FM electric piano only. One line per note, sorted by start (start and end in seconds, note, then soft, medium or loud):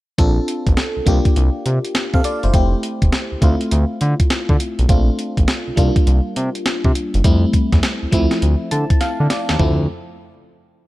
0.18 1.06 C4 medium
0.18 1.05 D4 medium
0.18 1.06 F4 medium
0.18 1.07 A4 medium
1.06 2.50 A#3 medium
1.06 2.51 D4 medium
1.06 1.65 F4 medium
1.06 1.65 G4 medium
2.14 2.24 A4 medium
2.14 2.24 F5 medium
2.25 2.43 F4 medium
2.25 2.43 D5 medium
2.44 2.53 E4 medium
2.44 2.71 C5 medium
2.54 3.40 A3 medium
2.54 3.41 C4 medium
2.54 3.42 E4 medium
2.54 3.43 G4 medium
3.41 4.86 A3 medium
3.41 4.86 C4 medium
3.41 4.87 E4 medium
3.41 4.87 F4 medium
4.89 5.77 A3 medium
4.89 5.77 C4 medium
4.89 5.77 D4 medium
4.89 5.77 F4 medium
5.76 7.21 G3 medium
5.76 7.21 A#3 medium
5.76 7.22 D4 medium
5.76 7.22 F4 medium
7.24 8.12 G3 medium
7.24 8.11 A3 medium
7.24 8.12 C4 medium
7.24 8.13 E4 medium
8.11 9.56 F3 medium
8.11 9.57 A3 medium
8.11 9.57 C4 medium
8.11 9.57 E4 medium
8.71 8.99 A5 medium
9.01 9.28 F5 medium
9.30 9.57 D5 medium
9.59 9.87 F3 medium
9.59 9.87 A3 medium
9.59 9.87 C4 medium
9.59 9.87 E4 medium